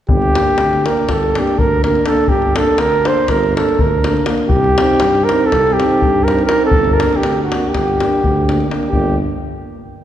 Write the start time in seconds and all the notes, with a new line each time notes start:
0.09 G1 G4, davul low
0.22 davul high
0.35 A#3 D4, davul high
0.58 D2, davul high
0.73 davul high
0.86 A#3 D4 A#4, davul high
0.97 davul high
1.09 G1 A4, davul high, davul low
1.23 davul high
1.35 A#3 D4 G4, davul high
1.47 davul high
1.59 D2 A#4, davul low
1.84 A#3 D4 A#4, davul high
1.95 davul high
2.06 A#3 D4 A4, davul high
2.17 davul high
2.28 G1 G4, davul low
2.42 davul high
2.56 A#3 D4 A4, davul high
2.78 D2 A#4, davul high
2.92 davul high
3.04 A#3 D4 C5, davul high
3.18 davul high
3.28 G1 A#4, davul high, davul low
3.43 davul high
3.56 A#3 D4 A4, davul high
3.69 davul high
3.79 D2 A#4, davul low
4.04 A#3 D4, davul high
4.17 davul high
4.26 A#3 D4, davul high
4.38 davul high
4.49 C2 G4, davul low
4.64 davul high
4.78 C4 D#4, davul high
4.99 G2, davul high
5.15 davul high
5.24 A#4
5.29 C4 D#4, davul high
5.41 davul high
5.46 A4
5.52 C2, davul high, davul low
5.67 davul high
5.73 G4
5.80 C4 D#4, davul high
5.91 davul high
6.02 G2, davul low
6.24 A#4
6.28 C4 D#4, davul high
6.39 davul high
6.46 A#4, davul high
6.51 C4 D#4
6.61 davul high
6.66 A4
6.71 G1, davul low
6.84 davul high
6.94 A#4
7.00 A#3 D4, davul high
7.13 G4, davul high
7.23 D2, davul high
7.44 F#4
7.50 A#3 D4, davul high
7.68 G4
7.73 G1, davul high, davul low
7.88 davul high
8.00 A#3 D4, davul high
8.13 davul high
8.24 D2, davul low
8.48 A#3 D4, davul high
8.60 davul high
8.70 A#3 D4, davul high
8.83 davul high
8.89 G1 G4
8.93 A#3 D4, davul low